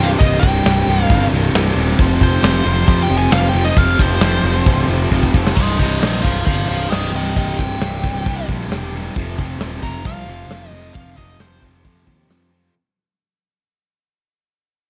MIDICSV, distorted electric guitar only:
0, 0, Header, 1, 2, 480
1, 0, Start_track
1, 0, Key_signature, -3, "minor"
1, 0, Tempo, 448096
1, 217, Time_signature, 4, 2, 24, 8
1, 15959, End_track
2, 0, Start_track
2, 0, Title_t, "Distorted electric guitar"
2, 0, Program_c, 0, 30
2, 0, Note_on_c, 0, 36, 84
2, 0, Note_on_c, 0, 43, 96
2, 0, Note_on_c, 0, 48, 95
2, 196, Note_off_c, 0, 36, 0
2, 207, Note_off_c, 0, 43, 0
2, 208, Note_off_c, 0, 48, 0
2, 209, Note_on_c, 0, 36, 93
2, 220, Note_on_c, 0, 43, 96
2, 221, Note_on_c, 0, 48, 108
2, 435, Note_off_c, 0, 36, 0
2, 439, Note_off_c, 0, 43, 0
2, 447, Note_off_c, 0, 48, 0
2, 447, Note_on_c, 0, 36, 89
2, 452, Note_on_c, 0, 43, 89
2, 460, Note_on_c, 0, 48, 100
2, 685, Note_off_c, 0, 36, 0
2, 696, Note_off_c, 0, 43, 0
2, 697, Note_off_c, 0, 48, 0
2, 698, Note_on_c, 0, 36, 99
2, 709, Note_on_c, 0, 43, 98
2, 709, Note_on_c, 0, 48, 105
2, 926, Note_off_c, 0, 36, 0
2, 930, Note_off_c, 0, 43, 0
2, 939, Note_on_c, 0, 36, 101
2, 943, Note_on_c, 0, 43, 108
2, 945, Note_off_c, 0, 48, 0
2, 957, Note_on_c, 0, 48, 113
2, 1168, Note_off_c, 0, 36, 0
2, 1170, Note_off_c, 0, 43, 0
2, 1178, Note_off_c, 0, 48, 0
2, 1180, Note_on_c, 0, 36, 88
2, 1182, Note_on_c, 0, 43, 93
2, 1191, Note_on_c, 0, 48, 84
2, 1411, Note_off_c, 0, 36, 0
2, 1414, Note_off_c, 0, 48, 0
2, 1418, Note_off_c, 0, 43, 0
2, 1424, Note_on_c, 0, 36, 87
2, 1427, Note_on_c, 0, 48, 91
2, 1431, Note_on_c, 0, 43, 85
2, 1658, Note_off_c, 0, 36, 0
2, 1665, Note_off_c, 0, 43, 0
2, 1671, Note_on_c, 0, 36, 105
2, 1672, Note_off_c, 0, 48, 0
2, 1677, Note_on_c, 0, 43, 117
2, 1685, Note_on_c, 0, 48, 114
2, 1884, Note_off_c, 0, 36, 0
2, 1893, Note_off_c, 0, 48, 0
2, 1894, Note_off_c, 0, 43, 0
2, 1897, Note_on_c, 0, 36, 84
2, 1905, Note_on_c, 0, 48, 96
2, 1907, Note_on_c, 0, 43, 92
2, 2119, Note_off_c, 0, 36, 0
2, 2123, Note_off_c, 0, 48, 0
2, 2124, Note_off_c, 0, 43, 0
2, 2136, Note_on_c, 0, 41, 91
2, 2139, Note_on_c, 0, 48, 102
2, 2151, Note_on_c, 0, 53, 97
2, 2359, Note_off_c, 0, 48, 0
2, 2363, Note_off_c, 0, 41, 0
2, 2367, Note_on_c, 0, 41, 91
2, 2371, Note_off_c, 0, 53, 0
2, 2372, Note_on_c, 0, 48, 89
2, 2375, Note_on_c, 0, 53, 91
2, 2593, Note_off_c, 0, 48, 0
2, 2598, Note_off_c, 0, 41, 0
2, 2602, Note_on_c, 0, 41, 96
2, 2605, Note_on_c, 0, 48, 96
2, 2609, Note_off_c, 0, 53, 0
2, 2613, Note_on_c, 0, 53, 92
2, 2828, Note_off_c, 0, 48, 0
2, 2833, Note_off_c, 0, 41, 0
2, 2837, Note_on_c, 0, 41, 107
2, 2841, Note_on_c, 0, 48, 115
2, 2845, Note_off_c, 0, 53, 0
2, 2849, Note_on_c, 0, 53, 124
2, 3056, Note_off_c, 0, 41, 0
2, 3068, Note_off_c, 0, 48, 0
2, 3069, Note_on_c, 0, 41, 86
2, 3071, Note_off_c, 0, 53, 0
2, 3080, Note_on_c, 0, 48, 96
2, 3084, Note_on_c, 0, 53, 105
2, 3302, Note_off_c, 0, 41, 0
2, 3305, Note_off_c, 0, 48, 0
2, 3307, Note_off_c, 0, 53, 0
2, 3315, Note_on_c, 0, 41, 89
2, 3318, Note_on_c, 0, 48, 93
2, 3320, Note_on_c, 0, 53, 98
2, 3527, Note_off_c, 0, 41, 0
2, 3535, Note_off_c, 0, 48, 0
2, 3540, Note_on_c, 0, 41, 94
2, 3546, Note_off_c, 0, 53, 0
2, 3548, Note_on_c, 0, 48, 107
2, 3559, Note_on_c, 0, 53, 121
2, 3774, Note_off_c, 0, 41, 0
2, 3775, Note_off_c, 0, 48, 0
2, 3780, Note_off_c, 0, 53, 0
2, 3787, Note_on_c, 0, 41, 87
2, 3788, Note_on_c, 0, 48, 92
2, 3793, Note_on_c, 0, 53, 101
2, 4020, Note_off_c, 0, 48, 0
2, 4021, Note_off_c, 0, 41, 0
2, 4031, Note_off_c, 0, 53, 0
2, 4033, Note_on_c, 0, 48, 99
2, 4034, Note_on_c, 0, 41, 96
2, 4044, Note_on_c, 0, 53, 107
2, 4273, Note_off_c, 0, 41, 0
2, 4277, Note_off_c, 0, 48, 0
2, 4283, Note_off_c, 0, 53, 0
2, 4285, Note_on_c, 0, 41, 88
2, 4290, Note_on_c, 0, 48, 87
2, 4296, Note_on_c, 0, 53, 93
2, 4502, Note_off_c, 0, 48, 0
2, 4504, Note_off_c, 0, 41, 0
2, 4511, Note_off_c, 0, 53, 0
2, 4514, Note_on_c, 0, 48, 91
2, 4517, Note_on_c, 0, 41, 90
2, 4524, Note_on_c, 0, 53, 95
2, 4753, Note_off_c, 0, 41, 0
2, 4761, Note_off_c, 0, 48, 0
2, 4766, Note_on_c, 0, 41, 98
2, 4767, Note_off_c, 0, 53, 0
2, 4774, Note_on_c, 0, 48, 107
2, 4779, Note_on_c, 0, 53, 116
2, 4996, Note_off_c, 0, 41, 0
2, 5005, Note_off_c, 0, 48, 0
2, 5009, Note_on_c, 0, 41, 81
2, 5014, Note_off_c, 0, 53, 0
2, 5017, Note_on_c, 0, 48, 82
2, 5027, Note_on_c, 0, 53, 88
2, 5218, Note_off_c, 0, 41, 0
2, 5231, Note_off_c, 0, 48, 0
2, 5231, Note_on_c, 0, 41, 91
2, 5234, Note_off_c, 0, 53, 0
2, 5244, Note_on_c, 0, 48, 94
2, 5247, Note_on_c, 0, 53, 92
2, 5472, Note_off_c, 0, 41, 0
2, 5476, Note_off_c, 0, 48, 0
2, 5481, Note_off_c, 0, 53, 0
2, 5485, Note_on_c, 0, 41, 95
2, 5488, Note_on_c, 0, 48, 111
2, 5494, Note_on_c, 0, 53, 110
2, 5712, Note_off_c, 0, 41, 0
2, 5722, Note_off_c, 0, 48, 0
2, 5725, Note_on_c, 0, 41, 89
2, 5727, Note_off_c, 0, 53, 0
2, 5735, Note_on_c, 0, 48, 86
2, 5740, Note_on_c, 0, 53, 91
2, 5947, Note_off_c, 0, 41, 0
2, 5951, Note_off_c, 0, 48, 0
2, 5954, Note_off_c, 0, 53, 0
2, 5975, Note_on_c, 0, 36, 91
2, 5981, Note_on_c, 0, 43, 99
2, 5982, Note_on_c, 0, 48, 102
2, 6206, Note_off_c, 0, 36, 0
2, 6209, Note_off_c, 0, 43, 0
2, 6210, Note_on_c, 0, 36, 79
2, 6221, Note_off_c, 0, 48, 0
2, 6222, Note_on_c, 0, 43, 83
2, 6226, Note_on_c, 0, 48, 85
2, 6440, Note_off_c, 0, 36, 0
2, 6441, Note_off_c, 0, 43, 0
2, 6445, Note_on_c, 0, 36, 74
2, 6452, Note_off_c, 0, 48, 0
2, 6454, Note_on_c, 0, 43, 82
2, 6456, Note_on_c, 0, 48, 84
2, 6692, Note_off_c, 0, 43, 0
2, 6697, Note_off_c, 0, 36, 0
2, 6701, Note_on_c, 0, 36, 88
2, 6702, Note_off_c, 0, 48, 0
2, 6705, Note_on_c, 0, 43, 82
2, 6706, Note_on_c, 0, 48, 92
2, 6918, Note_off_c, 0, 36, 0
2, 6925, Note_off_c, 0, 43, 0
2, 6931, Note_on_c, 0, 36, 84
2, 6935, Note_off_c, 0, 48, 0
2, 6938, Note_on_c, 0, 43, 90
2, 6947, Note_on_c, 0, 48, 89
2, 7162, Note_off_c, 0, 36, 0
2, 7172, Note_off_c, 0, 48, 0
2, 7174, Note_off_c, 0, 43, 0
2, 7174, Note_on_c, 0, 36, 74
2, 7185, Note_on_c, 0, 48, 90
2, 7187, Note_on_c, 0, 43, 78
2, 7392, Note_off_c, 0, 36, 0
2, 7401, Note_off_c, 0, 43, 0
2, 7405, Note_on_c, 0, 36, 79
2, 7406, Note_off_c, 0, 48, 0
2, 7414, Note_on_c, 0, 43, 92
2, 7419, Note_on_c, 0, 48, 89
2, 7652, Note_off_c, 0, 36, 0
2, 7655, Note_off_c, 0, 43, 0
2, 7657, Note_off_c, 0, 48, 0
2, 7665, Note_on_c, 0, 36, 81
2, 7668, Note_on_c, 0, 43, 74
2, 7670, Note_on_c, 0, 48, 86
2, 7878, Note_off_c, 0, 36, 0
2, 7884, Note_off_c, 0, 43, 0
2, 7890, Note_off_c, 0, 48, 0
2, 7891, Note_on_c, 0, 36, 86
2, 7897, Note_on_c, 0, 43, 96
2, 7903, Note_on_c, 0, 48, 101
2, 8129, Note_off_c, 0, 36, 0
2, 8140, Note_off_c, 0, 48, 0
2, 8141, Note_off_c, 0, 43, 0
2, 8142, Note_on_c, 0, 36, 77
2, 8153, Note_on_c, 0, 48, 87
2, 8154, Note_on_c, 0, 43, 82
2, 8359, Note_off_c, 0, 36, 0
2, 8368, Note_off_c, 0, 48, 0
2, 8372, Note_off_c, 0, 43, 0
2, 8372, Note_on_c, 0, 36, 82
2, 8381, Note_on_c, 0, 48, 87
2, 8385, Note_on_c, 0, 43, 85
2, 8606, Note_off_c, 0, 43, 0
2, 8607, Note_off_c, 0, 36, 0
2, 8612, Note_off_c, 0, 48, 0
2, 8618, Note_on_c, 0, 43, 78
2, 8620, Note_on_c, 0, 36, 83
2, 8625, Note_on_c, 0, 48, 86
2, 8846, Note_off_c, 0, 36, 0
2, 8857, Note_off_c, 0, 43, 0
2, 8859, Note_off_c, 0, 48, 0
2, 8859, Note_on_c, 0, 36, 75
2, 8869, Note_on_c, 0, 43, 84
2, 8872, Note_on_c, 0, 48, 89
2, 9094, Note_off_c, 0, 36, 0
2, 9100, Note_off_c, 0, 43, 0
2, 9107, Note_on_c, 0, 36, 79
2, 9109, Note_off_c, 0, 48, 0
2, 9113, Note_on_c, 0, 43, 87
2, 9122, Note_on_c, 0, 48, 85
2, 9327, Note_off_c, 0, 36, 0
2, 9332, Note_off_c, 0, 48, 0
2, 9335, Note_off_c, 0, 43, 0
2, 9339, Note_on_c, 0, 36, 77
2, 9345, Note_on_c, 0, 48, 87
2, 9347, Note_on_c, 0, 43, 86
2, 9571, Note_off_c, 0, 36, 0
2, 9571, Note_off_c, 0, 43, 0
2, 9581, Note_off_c, 0, 48, 0
2, 9584, Note_on_c, 0, 36, 72
2, 9584, Note_on_c, 0, 43, 78
2, 9594, Note_on_c, 0, 48, 77
2, 9797, Note_off_c, 0, 36, 0
2, 9797, Note_off_c, 0, 43, 0
2, 9802, Note_off_c, 0, 48, 0
2, 9830, Note_on_c, 0, 41, 80
2, 9832, Note_on_c, 0, 48, 88
2, 9834, Note_on_c, 0, 53, 92
2, 10056, Note_off_c, 0, 48, 0
2, 10057, Note_off_c, 0, 41, 0
2, 10061, Note_on_c, 0, 41, 70
2, 10065, Note_off_c, 0, 53, 0
2, 10069, Note_on_c, 0, 48, 82
2, 10070, Note_on_c, 0, 53, 82
2, 10291, Note_off_c, 0, 48, 0
2, 10296, Note_off_c, 0, 41, 0
2, 10300, Note_on_c, 0, 41, 81
2, 10304, Note_on_c, 0, 48, 81
2, 10308, Note_off_c, 0, 53, 0
2, 10313, Note_on_c, 0, 53, 85
2, 10525, Note_off_c, 0, 41, 0
2, 10525, Note_off_c, 0, 48, 0
2, 10529, Note_on_c, 0, 41, 82
2, 10537, Note_on_c, 0, 48, 77
2, 10545, Note_off_c, 0, 53, 0
2, 10550, Note_on_c, 0, 53, 93
2, 10768, Note_off_c, 0, 48, 0
2, 10772, Note_off_c, 0, 41, 0
2, 10776, Note_on_c, 0, 41, 87
2, 10781, Note_on_c, 0, 48, 83
2, 10786, Note_off_c, 0, 53, 0
2, 10790, Note_on_c, 0, 53, 91
2, 11009, Note_off_c, 0, 48, 0
2, 11011, Note_off_c, 0, 41, 0
2, 11015, Note_on_c, 0, 41, 79
2, 11022, Note_on_c, 0, 48, 72
2, 11026, Note_off_c, 0, 53, 0
2, 11031, Note_on_c, 0, 53, 79
2, 11265, Note_off_c, 0, 41, 0
2, 11265, Note_off_c, 0, 48, 0
2, 11270, Note_on_c, 0, 41, 71
2, 11278, Note_off_c, 0, 53, 0
2, 11278, Note_on_c, 0, 48, 83
2, 11282, Note_on_c, 0, 53, 89
2, 11489, Note_off_c, 0, 41, 0
2, 11493, Note_on_c, 0, 41, 79
2, 11497, Note_off_c, 0, 48, 0
2, 11504, Note_off_c, 0, 53, 0
2, 11508, Note_on_c, 0, 53, 89
2, 11509, Note_on_c, 0, 48, 72
2, 11718, Note_off_c, 0, 41, 0
2, 11726, Note_off_c, 0, 48, 0
2, 11729, Note_off_c, 0, 53, 0
2, 11731, Note_on_c, 0, 41, 75
2, 11739, Note_on_c, 0, 48, 93
2, 11742, Note_on_c, 0, 53, 91
2, 11945, Note_off_c, 0, 41, 0
2, 11953, Note_off_c, 0, 48, 0
2, 11958, Note_on_c, 0, 41, 71
2, 11962, Note_off_c, 0, 53, 0
2, 11966, Note_on_c, 0, 48, 80
2, 11975, Note_on_c, 0, 53, 76
2, 12202, Note_off_c, 0, 41, 0
2, 12205, Note_off_c, 0, 48, 0
2, 12208, Note_off_c, 0, 53, 0
2, 12215, Note_on_c, 0, 41, 75
2, 12218, Note_on_c, 0, 48, 77
2, 12221, Note_on_c, 0, 53, 87
2, 12443, Note_off_c, 0, 41, 0
2, 12448, Note_off_c, 0, 48, 0
2, 12456, Note_on_c, 0, 41, 76
2, 12458, Note_off_c, 0, 53, 0
2, 12461, Note_on_c, 0, 48, 79
2, 12471, Note_on_c, 0, 53, 77
2, 12667, Note_off_c, 0, 41, 0
2, 12676, Note_off_c, 0, 48, 0
2, 12680, Note_on_c, 0, 41, 77
2, 12683, Note_off_c, 0, 53, 0
2, 12689, Note_on_c, 0, 48, 86
2, 12696, Note_on_c, 0, 53, 93
2, 12905, Note_off_c, 0, 41, 0
2, 12917, Note_off_c, 0, 53, 0
2, 12918, Note_off_c, 0, 48, 0
2, 12918, Note_on_c, 0, 41, 73
2, 12930, Note_on_c, 0, 53, 85
2, 12931, Note_on_c, 0, 48, 78
2, 13152, Note_off_c, 0, 41, 0
2, 13159, Note_off_c, 0, 48, 0
2, 13165, Note_on_c, 0, 41, 67
2, 13166, Note_off_c, 0, 53, 0
2, 13172, Note_on_c, 0, 48, 79
2, 13179, Note_on_c, 0, 53, 77
2, 13388, Note_off_c, 0, 41, 0
2, 13391, Note_off_c, 0, 48, 0
2, 13400, Note_on_c, 0, 41, 67
2, 13404, Note_off_c, 0, 53, 0
2, 13404, Note_on_c, 0, 48, 77
2, 13417, Note_on_c, 0, 53, 74
2, 13631, Note_off_c, 0, 41, 0
2, 13633, Note_off_c, 0, 48, 0
2, 13640, Note_off_c, 0, 53, 0
2, 15959, End_track
0, 0, End_of_file